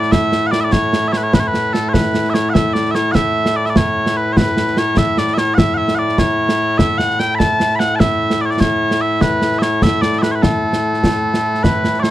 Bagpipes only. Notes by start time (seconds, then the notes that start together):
Already playing: A2 A3 E4 D5
0.12 E5
0.47 F#5
0.51 D5
0.60 D5 E5
0.72 C#5
1.08 E5
1.12 C#5
1.17 B4
1.23 C#5
1.34 B4
1.40 C#5
1.47 B4
1.73 A4
1.89 C#5
1.93 B4
2.30 E5
2.34 C#5
2.50 F#5
2.54 E5
2.73 D5
2.91 C#5 E5
3.12 E5 F#5
3.56 D5
3.66 D5 E5
3.77 C#5
4.17 B4
4.33 C#5
4.37 B4
4.78 C#5
4.98 E5
5.18 D5
5.34 E5
5.38 C#5
5.54 F#5
5.58 E5
5.74 E5 F#5
5.95 D5 F#5
6.19 C#5
6.78 E5
6.98 F#5
7.20 G5
7.35 A5 B5
7.75 F#5 B5
7.96 A5
8.00 E5
8.41 D5
8.45 C#5
8.50 D5
8.60 C#5
9.01 E5
9.21 B4
9.59 C#5 E5
9.83 E5
10.01 D5
10.19 B4 E5
10.31 B4 C#5
10.42 A4
11.63 B4
11.99 C#5 D5